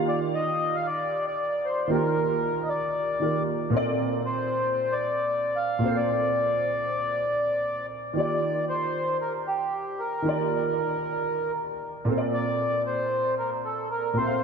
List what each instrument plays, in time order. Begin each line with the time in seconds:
Already playing: grand piano D#3 A#3 F4 G4 F5
0.08 accordion D5
0.35 accordion D#5
0.75 accordion F5
0.87 accordion D5
1.27 accordion D5
1.65 accordion C5
1.85 grand piano D#3, accordion C5
1.89 grand piano A#3 F4 G4, accordion A#4
1.94 grand piano A#4
2.63 accordion D#5
2.69 accordion D5
3.19 grand piano D#3 A#3 F4 G4 A#4
3.70 grand piano A#2 A#3 C4
3.75 grand piano A4 D5
4.26 accordion C5
4.92 accordion D5
5.56 accordion F5
5.78 grand piano A#2 A#3 C4
5.84 grand piano A4 C5
5.97 accordion D5
8.13 grand piano D#3 A#3 F4, accordion D5
8.18 grand piano G4 D5
8.69 accordion C5
9.21 accordion A#4
9.47 accordion G4
10.00 accordion A#4
10.22 grand piano D#3 A#3 F4
10.27 grand piano G4 D5
12.05 grand piano A#2 A#3 C4
12.10 grand piano A4 C5
12.18 grand piano D5
12.34 accordion D5
12.87 accordion C5
13.39 accordion A#4
13.65 accordion A4
13.91 accordion A#4
14.13 grand piano A#2 A#3 C4, accordion C5
14.18 grand piano A4 E5
14.26 grand piano F5